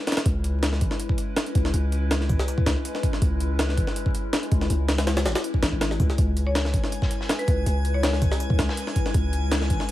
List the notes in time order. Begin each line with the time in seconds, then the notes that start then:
0.07 snare, closed hi-hat
0.12 snare, closed hi-hat
0.17 snare, closed hi-hat
0.26 C#2, kick, closed hi-hat
0.44 closed hi-hat
0.63 snare, closed hi-hat
0.73 snare
0.81 G#1, kick, closed hi-hat
0.91 snare
1.00 closed hi-hat
1.09 kick
1.18 closed hi-hat
1.37 snare, closed hi-hat
1.47 closed hi-hat
1.55 C#2, kick, closed hi-hat
1.65 snare
1.74 C#2, closed hi-hat
1.92 closed hi-hat
2.11 snare, closed hi-hat
2.21 snare
2.29 G#1, kick, closed hi-hat
2.39 snare
2.48 closed hi-hat
2.58 kick
2.66 C#2, snare, closed hi-hat
2.85 closed hi-hat
2.95 snare
3.03 kick, closed hi-hat
3.13 snare
3.22 C#2, kick, closed hi-hat
3.40 closed hi-hat
3.59 snare, closed hi-hat
3.69 snare
3.77 G#1, kick, closed hi-hat
3.87 snare
3.96 closed hi-hat
4.06 kick
4.15 closed hi-hat
4.33 snare, closed hi-hat
4.43 closed hi-hat
4.52 C#2, kick, closed hi-hat
4.61 snare
4.70 C#2, closed hi-hat
4.89 snare, closed hi-hat
4.98 snare, closed hi-hat
5.07 snare, closed hi-hat
5.17 snare, closed hi-hat
5.26 G#1, snare, closed hi-hat
5.35 snare, closed hi-hat
5.44 closed hi-hat
5.54 kick
5.63 G#1, snare, closed hi-hat
5.73 G#1
5.81 snare, closed hi-hat
5.91 snare
6.00 C#2, kick, closed hi-hat
6.10 snare
6.18 C#2 G#5 G#6, kick, closed hi-hat, shaker
6.37 closed hi-hat, shaker
6.47 C#5
6.55 snare, closed hi-hat
6.65 snare
6.74 G#1, kick, closed hi-hat, shaker
6.84 snare
6.92 closed hi-hat, shaker
7.02 kick, snare
7.11 closed hi-hat, shaker
7.21 snare
7.29 snare, closed hi-hat
7.39 B4, closed hi-hat
7.48 C#2 B4, kick, closed hi-hat, shaker
7.66 C#2, closed hi-hat, shaker
7.85 closed hi-hat, shaker
7.94 C#5
8.03 C#5, snare, closed hi-hat, shaker
8.13 snare
8.22 G#1, kick, closed hi-hat, shaker
8.32 snare
8.40 closed hi-hat, shaker
8.50 kick
8.59 C#2, snare, closed hi-hat
8.69 snare
8.77 closed hi-hat, shaker
8.87 snare
8.96 kick, closed hi-hat, shaker
9.06 snare
9.14 C#2, kick, closed hi-hat, shaker
9.33 closed hi-hat, shaker
9.51 snare, closed hi-hat
9.61 snare
9.70 G#1, kick, closed hi-hat, shaker
9.80 snare